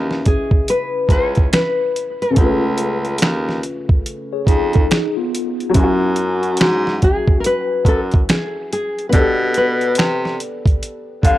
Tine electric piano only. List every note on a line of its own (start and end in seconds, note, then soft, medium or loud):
4.33 4.47 G#4 medium
4.33 4.48 C#5 medium
4.48 4.73 D#4 medium
4.48 4.73 G#4 medium
4.75 4.90 D#4 medium
4.75 4.90 A4 medium
4.91 5.16 D#4 medium
4.91 5.16 G#4 medium
5.17 5.72 B3 medium
5.17 5.72 F4 medium